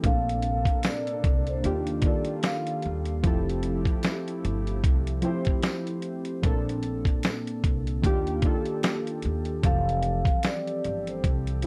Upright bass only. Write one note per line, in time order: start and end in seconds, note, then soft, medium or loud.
0.04 0.64 A#1 loud
1.25 1.62 C2 medium
1.65 2.02 D#2 loud
2.86 3.22 D#2 medium
3.24 3.84 F1 medium
4.45 4.82 G1 loud
4.84 5.21 C2 medium
6.44 7.03 A#1 loud
7.64 8.02 C2 medium
8.04 8.41 D#2 loud
9.25 9.62 D#2 medium
9.64 10.24 F1 loud
10.85 11.22 G1 medium
11.25 11.62 C2 medium